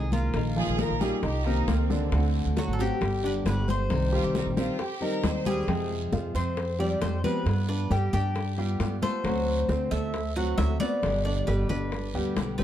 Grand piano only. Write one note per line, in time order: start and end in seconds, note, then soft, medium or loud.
0.12 0.49 A#3 medium
0.12 0.49 A#4 medium
0.57 0.93 F3 medium
0.57 0.93 F4 medium
1.01 1.19 G3 medium
1.01 1.19 G4 medium
1.23 1.42 D#4 medium
1.23 1.42 D#5 medium
1.46 1.82 A#3 medium
1.46 1.82 A#4 medium
1.90 2.08 D3 medium
1.90 2.08 D4 medium
2.12 2.49 D3 medium
2.12 2.49 D4 medium
2.57 2.93 F#3 medium
2.57 2.94 F#4 medium
3.01 3.20 G3 medium
3.01 3.20 G4 medium
3.24 3.60 D4 medium
3.24 3.60 D5 medium
3.68 4.05 C5 medium
4.12 4.49 G3 medium
4.12 4.49 G4 medium
4.57 4.75 C4 medium
4.57 4.76 C5 medium
4.79 4.98 G4 medium
4.79 4.98 G5 medium
5.02 5.38 D#4 medium
5.02 5.38 D#5 medium
5.46 5.65 G3 medium
5.46 5.65 G4 medium
5.69 6.05 G5 medium
6.13 6.31 F4 medium
6.13 6.31 F5 medium
6.35 6.72 C4 medium
6.35 6.72 C5 medium
6.79 7.16 G3 medium
6.79 7.16 G4 medium
7.24 7.61 B3 medium
7.24 7.61 B4 medium
7.69 7.87 D4 medium
7.69 7.87 D5 medium
7.91 8.09 G3 medium
7.91 8.10 G4 medium
8.14 8.50 D4 medium
8.14 8.50 D5 medium
8.58 8.95 G3 medium
8.58 8.95 G4 medium
9.02 9.21 A3 medium
9.02 9.21 A4 medium
9.25 9.61 F#3 medium
9.25 9.61 F#4 medium
9.69 9.88 C4 medium
9.69 9.88 C5 medium
9.92 10.28 A3 medium
9.92 10.28 A4 medium
10.37 10.73 F#3 medium
10.37 10.73 F#4 medium
10.81 11.17 B3 medium
10.81 11.18 B4 medium
11.26 11.44 D4 medium
11.26 11.44 D5 medium
11.48 11.66 G3 medium
11.48 11.66 G4 medium
11.70 12.07 D4 medium
11.70 12.07 D5 medium
12.15 12.51 G3 medium
12.15 12.51 G4 medium
12.59 12.64 C4 medium
12.59 12.64 C5 medium